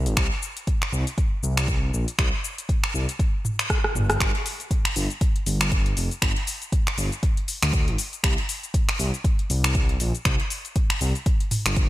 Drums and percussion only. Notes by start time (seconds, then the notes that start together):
0.06 closed hi-hat, cabasa
0.17 finger snap, kick, closed hi-hat, cabasa
0.42 cabasa
0.57 closed hi-hat, cabasa
0.67 kick, closed hi-hat, cabasa
0.82 finger snap
0.93 cabasa
1.07 closed hi-hat, cabasa
1.18 kick, closed hi-hat, cabasa
1.43 cabasa
1.57 finger snap, closed hi-hat, cabasa
1.68 kick, closed hi-hat, cabasa
1.94 cabasa
2.08 closed hi-hat, cabasa
2.19 finger snap, kick, closed hi-hat, cabasa
2.44 cabasa
2.58 closed hi-hat, cabasa
2.69 kick, closed hi-hat, cabasa
2.84 finger snap
2.95 cabasa
3.09 closed hi-hat, cabasa
3.19 kick, closed hi-hat, cabasa
3.45 mid tom, cabasa
3.59 finger snap, closed hi-hat, cabasa
3.70 kick, cross-stick, closed hi-hat, cabasa
3.84 cross-stick
3.95 mid tom, cabasa
4.10 cross-stick, closed hi-hat, cabasa
4.20 finger snap, kick, closed hi-hat, cabasa
4.35 closed hi-hat
4.46 open hi-hat, cabasa
4.60 closed hi-hat, cabasa
4.71 kick, closed hi-hat, cabasa
4.85 finger snap, closed hi-hat
4.96 open hi-hat, cabasa
5.10 closed hi-hat, cabasa
5.21 kick, closed hi-hat, cabasa
5.36 closed hi-hat
5.46 open hi-hat, cabasa
5.61 finger snap, cabasa
5.72 kick, closed hi-hat, cabasa
5.86 closed hi-hat
5.97 open hi-hat, cabasa
6.11 closed hi-hat, cabasa
6.22 finger snap, kick, closed hi-hat, cabasa
6.36 closed hi-hat
6.47 open hi-hat, cabasa
6.62 closed hi-hat, cabasa
6.72 kick, closed hi-hat, cabasa
6.87 finger snap, closed hi-hat
6.98 open hi-hat, cabasa
7.12 closed hi-hat, cabasa
7.23 kick, closed hi-hat, cabasa
7.37 closed hi-hat
7.48 open hi-hat, cabasa
7.63 finger snap, cabasa
7.73 kick, closed hi-hat, cabasa
7.88 closed hi-hat
7.98 open hi-hat, cabasa
8.13 closed hi-hat, cabasa
8.24 finger snap, kick, closed hi-hat, cabasa
8.38 closed hi-hat
8.49 open hi-hat, cabasa
8.63 closed hi-hat, cabasa
8.74 kick, closed hi-hat, cabasa
8.89 finger snap, closed hi-hat
8.99 open hi-hat, cabasa
9.14 closed hi-hat, cabasa
9.24 kick, closed hi-hat, cabasa
9.39 closed hi-hat
9.50 open hi-hat, cabasa
9.64 finger snap, cabasa
9.75 kick, closed hi-hat, cabasa
9.89 closed hi-hat
10.00 open hi-hat, cabasa
10.15 closed hi-hat, cabasa
10.25 finger snap, kick, closed hi-hat, cabasa
10.40 closed hi-hat
10.50 open hi-hat, cabasa
10.65 closed hi-hat, cabasa
10.76 kick, closed hi-hat, cabasa
10.90 finger snap, closed hi-hat
11.01 open hi-hat, cabasa
11.15 closed hi-hat, cabasa
11.26 kick, closed hi-hat, cabasa
11.40 closed hi-hat
11.51 mid tom, open hi-hat, cabasa
11.66 finger snap, cabasa
11.76 kick, closed hi-hat, cabasa